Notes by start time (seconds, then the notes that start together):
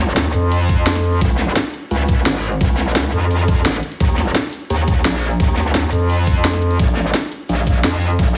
Already playing: D#2
0.17 D#2, snare, closed hi-hat, ride
0.34 F2, closed hi-hat, shaker
0.52 closed hi-hat, ride, shaker
0.69 kick, closed hi-hat, shaker
0.86 snare, closed hi-hat, ride
0.95 snare
1.04 closed hi-hat, shaker
1.13 closed hi-hat
1.21 C#2, kick, closed hi-hat, ride
1.30 closed hi-hat
1.39 snare, closed hi-hat, shaker
1.56 snare, closed hi-hat, ride
1.74 closed hi-hat, shaker
1.91 C#2, closed hi-hat, ride, shaker
2.09 kick, closed hi-hat, shaker
2.26 G#1, snare, closed hi-hat, ride
2.43 closed hi-hat, shaker
2.52 closed hi-hat
2.61 C#2, kick, closed hi-hat, ride
2.69 closed hi-hat
2.78 snare, closed hi-hat, shaker
2.96 C#2, snare, closed hi-hat, ride
3.13 F2, closed hi-hat, shaker
3.31 closed hi-hat, ride, shaker
3.48 kick, closed hi-hat, shaker
3.65 G#1, snare, closed hi-hat, ride
3.74 snare
3.83 closed hi-hat, shaker
3.92 closed hi-hat, shaker
4.00 D#2, kick, closed hi-hat, ride
4.09 closed hi-hat
4.18 snare, closed hi-hat, shaker
4.35 snare, closed hi-hat, ride
4.53 closed hi-hat, shaker
4.70 D#2, closed hi-hat, ride, shaker
4.88 kick, closed hi-hat, shaker
5.05 A#1, snare, closed hi-hat, ride
5.23 closed hi-hat, shaker
5.31 closed hi-hat
5.40 D#2, kick, closed hi-hat, ride
5.49 closed hi-hat
5.57 snare, closed hi-hat, shaker
5.75 D#2, snare, closed hi-hat, ride
5.92 F2, closed hi-hat, shaker
6.10 closed hi-hat, ride, shaker
6.27 kick, closed hi-hat, shaker
6.45 snare, closed hi-hat, ride
6.53 snare
6.62 closed hi-hat, shaker
6.71 closed hi-hat
6.79 A#1, kick, closed hi-hat, ride
6.88 closed hi-hat
6.97 snare, closed hi-hat, shaker
7.14 snare, closed hi-hat, ride
7.32 closed hi-hat, shaker
7.49 A#1, closed hi-hat, ride, shaker
7.67 kick, closed hi-hat, shaker
7.84 F2, snare, closed hi-hat, ride
8.02 closed hi-hat, shaker
8.10 closed hi-hat
8.19 A#1, kick, closed hi-hat, ride
8.28 closed hi-hat